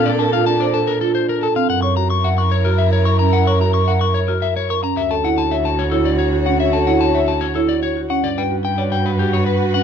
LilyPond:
<<
  \new Staff \with { instrumentName = "Clean electric guitar" } { \time 3/4 \key d \major \tempo 4 = 110 d''16 a''16 f''16 a''16 d''16 a''16 bes'16 a'16 c''16 bes'16 a''16 f''16 | fis''16 cis'''16 ais''16 cis'''16 fis''16 cis'''16 cis''16 ais'16 e''16 cis''16 cis'''16 ais''16 | fis''16 cis'''16 ais''16 cis'''16 fis''16 cis'''16 cis''16 ais'16 e''16 cis''16 cis'''16 ais''16 | e''16 a''16 fis''16 a''16 e''16 a''16 cis''16 a'16 d''16 cis''16 r16 fis''16 |
e''16 a''16 fis''16 a''16 e''16 a''16 cis''16 a'16 d''16 cis''16 r16 fis''16 | d''16 g''16 r16 g''16 d''16 g''16 b'16 g'16 cis''16 b'16 r16 fis''16 | }
  \new Staff \with { instrumentName = "French horn" } { \time 3/4 \key d \major a'2~ a'8. r16 | ais'2.~ | ais'2~ ais'8. r16 | fis'2.~ |
fis'2~ fis'8. r16 | fis'2. | }
  \new Staff \with { instrumentName = "String section" } { \time 3/4 \key d \major <d' a'>2~ <d' a'>8. r16 | <e' ais'>2.~ | <e' ais'>2~ <e' ais'>8. r16 | <fis' cis''>2.~ |
<fis' cis''>2~ <fis' cis''>8. r16 | <fis' b'>2. | }
  \new Staff \with { instrumentName = "Marimba" } { \time 3/4 \key d \major r16 bes'16 f'16 r16 c''16 a'16 r16 f'16 r8 a'16 c'16 | r16 cis''16 fis'16 r16 e''16 r8 fis'16 r8 ais'16 cis'16 | r16 cis''16 fis'16 r16 e''16 r8 fis'16 r8 ais'16 cis'16 | r16 a'16 e'16 r16 cis''16 r8 e'16 r8 fis'16 cis'16 |
r16 a'16 e'16 r16 cis''16 r8 e'16 r8 fis'16 cis'16 | r16 b'16 fis'16 r16 cis''16 r8 fis'16 r8. cis'16 | }
  \new Staff \with { instrumentName = "Cello" } { \clef bass \time 3/4 \key d \major bes,2. | fis,2.~ | fis,2. | d,2.~ |
d,2. | g,2. | }
>>